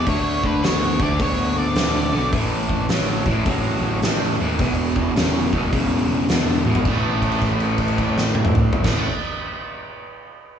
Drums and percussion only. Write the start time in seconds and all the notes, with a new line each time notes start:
0.06 kick, open hi-hat
0.44 kick
0.63 snare, open hi-hat
1.00 kick
1.19 kick, open hi-hat
1.75 snare, open hi-hat
2.32 kick, open hi-hat
2.69 kick
2.89 snare, open hi-hat
3.26 kick
3.45 kick, open hi-hat
4.02 snare, open hi-hat
4.59 kick, open hi-hat
4.96 kick
5.16 snare, open hi-hat
5.53 kick
5.73 kick, open hi-hat
6.29 snare, open hi-hat
6.65 high tom
6.75 floor tom
6.85 kick, crash
7.22 kick, crash
7.32 crash
7.41 kick, crash
7.60 crash
7.78 kick, crash
7.88 crash
7.98 kick, crash
8.18 snare
8.35 high tom
8.45 mid tom
8.55 mid tom
8.73 floor tom
8.84 kick, snare, crash